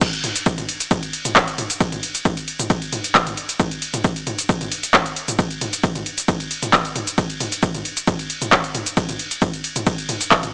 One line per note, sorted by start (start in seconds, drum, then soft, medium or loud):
0.01 kick loud
0.01 closed hi-hat medium
0.01 crash loud
0.01 ride medium
0.01 shaker medium
0.13 closed hi-hat medium
0.13 shaker soft
0.24 mid tom medium
0.24 open hi-hat loud
0.36 closed hi-hat medium
0.36 shaker medium
0.46 kick loud
0.46 closed hi-hat medium
0.46 ride medium
0.46 shaker medium
0.58 closed hi-hat medium
0.58 mid tom medium
0.58 shaker soft
0.69 open hi-hat loud
0.80 closed hi-hat medium
0.80 shaker medium
0.91 kick loud
0.91 closed hi-hat medium
0.91 mid tom medium
0.91 ride medium
0.91 shaker soft
1.03 closed hi-hat medium
1.03 shaker soft
1.13 open hi-hat loud
1.25 closed hi-hat medium
1.25 mid tom medium
1.25 shaker medium
1.36 kick loud
1.36 clap loud
1.36 closed hi-hat medium
1.36 ride medium
1.36 shaker medium
1.48 closed hi-hat medium
1.48 shaker soft
1.58 mid tom medium
1.58 open hi-hat loud
1.70 closed hi-hat medium
1.70 shaker medium
1.80 kick loud
1.80 closed hi-hat medium
1.80 ride medium
1.80 shaker medium
1.92 closed hi-hat medium
1.92 mid tom medium
1.92 shaker soft
2.03 open hi-hat loud
2.15 closed hi-hat medium
2.15 shaker medium
2.25 kick loud
2.25 closed hi-hat medium
2.25 mid tom medium
2.25 ride medium
2.25 shaker soft
2.37 closed hi-hat medium
2.37 shaker soft
2.48 open hi-hat loud
2.59 closed hi-hat medium
2.59 mid tom medium
2.59 shaker medium
2.70 kick loud
2.70 closed hi-hat medium
2.70 ride medium
2.70 shaker soft
2.82 closed hi-hat medium
2.82 shaker soft
2.92 mid tom medium
2.92 open hi-hat loud
3.04 closed hi-hat medium
3.04 shaker medium
3.15 kick loud
3.15 clap loud
3.15 closed hi-hat medium
3.15 ride medium
3.15 shaker medium
3.27 closed hi-hat medium
3.27 mid tom medium
3.27 shaker soft
3.37 open hi-hat loud
3.49 closed hi-hat medium
3.49 shaker medium
3.60 kick loud
3.60 closed hi-hat medium
3.60 mid tom medium
3.60 ride medium
3.60 shaker medium
3.71 closed hi-hat medium
3.71 shaker soft
3.82 open hi-hat loud
3.94 closed hi-hat medium
3.94 mid tom medium
3.94 shaker medium
4.04 kick loud
4.04 closed hi-hat medium
4.04 ride medium
4.04 shaker medium
4.16 closed hi-hat medium
4.16 shaker soft
4.27 mid tom medium
4.27 open hi-hat loud
4.39 closed hi-hat medium
4.39 shaker medium
4.49 kick loud
4.49 closed hi-hat medium
4.49 ride medium
4.49 shaker medium
4.61 closed hi-hat medium
4.61 mid tom medium
4.61 shaker soft
4.72 open hi-hat loud
4.83 closed hi-hat medium
4.83 shaker medium
4.94 kick loud
4.94 clap loud
4.94 closed hi-hat medium
4.94 mid tom medium
4.94 ride medium
4.94 shaker medium
5.06 closed hi-hat medium
5.06 shaker soft
5.16 open hi-hat loud
5.28 closed hi-hat medium
5.28 mid tom medium
5.28 shaker medium
5.39 kick loud
5.39 closed hi-hat medium
5.39 ride medium
5.39 shaker medium
5.51 closed hi-hat medium
5.51 shaker soft
5.61 mid tom medium
5.61 open hi-hat loud
5.73 closed hi-hat medium
5.73 shaker medium
5.83 kick loud
5.83 closed hi-hat medium
5.83 ride medium
5.83 shaker medium
5.95 closed hi-hat medium
5.95 mid tom medium
5.95 shaker soft
6.06 open hi-hat loud
6.18 closed hi-hat medium
6.18 shaker medium
6.28 kick loud
6.28 closed hi-hat medium
6.28 mid tom medium
6.28 ride medium
6.28 shaker medium
6.40 closed hi-hat medium
6.40 shaker soft
6.51 open hi-hat loud
6.63 closed hi-hat medium
6.63 mid tom medium
6.63 shaker medium
6.73 kick loud
6.73 clap loud
6.73 closed hi-hat medium
6.73 ride medium
6.73 shaker medium
6.85 closed hi-hat medium
6.85 shaker soft
6.96 mid tom medium
6.96 open hi-hat loud
7.07 closed hi-hat medium
7.07 shaker medium
7.18 kick loud
7.18 closed hi-hat medium
7.18 ride medium
7.18 shaker medium
7.30 closed hi-hat medium
7.30 shaker soft
7.40 mid tom medium
7.40 open hi-hat loud
7.52 closed hi-hat medium
7.52 shaker medium
7.63 kick loud
7.63 closed hi-hat medium
7.63 ride medium
7.63 shaker medium
7.75 closed hi-hat medium
7.75 mid tom medium
7.75 shaker soft
7.85 open hi-hat loud
7.97 closed hi-hat medium
7.97 shaker medium
8.07 kick loud
8.07 closed hi-hat medium
8.07 mid tom medium
8.07 ride medium
8.07 shaker medium
8.19 closed hi-hat medium
8.19 shaker soft
8.30 open hi-hat loud
8.42 closed hi-hat medium
8.42 mid tom medium
8.42 shaker medium
8.52 kick loud
8.52 clap loud
8.52 closed hi-hat medium
8.52 ride medium
8.52 shaker medium
8.64 closed hi-hat medium
8.64 shaker soft
8.75 mid tom medium
8.75 open hi-hat loud
8.86 closed hi-hat medium
8.86 shaker medium
8.97 kick loud
8.97 closed hi-hat medium
8.97 ride medium
8.97 shaker medium
9.09 closed hi-hat medium
9.09 mid tom medium
9.09 shaker soft
9.19 open hi-hat loud
9.31 closed hi-hat medium
9.31 shaker medium
9.42 kick loud
9.42 closed hi-hat medium
9.42 mid tom medium
9.42 ride medium
9.42 shaker medium
9.54 closed hi-hat medium
9.54 shaker soft
9.64 open hi-hat medium
9.76 closed hi-hat medium
9.76 mid tom medium
9.76 shaker medium
9.87 kick loud
9.87 closed hi-hat medium
9.87 ride medium
9.87 shaker medium
9.98 closed hi-hat medium
9.98 shaker soft
10.09 mid tom medium
10.09 open hi-hat loud
10.21 closed hi-hat medium
10.21 shaker medium
10.31 kick loud
10.31 clap loud
10.31 closed hi-hat medium
10.31 ride medium
10.31 shaker medium
10.43 closed hi-hat medium
10.43 mid tom medium
10.43 shaker soft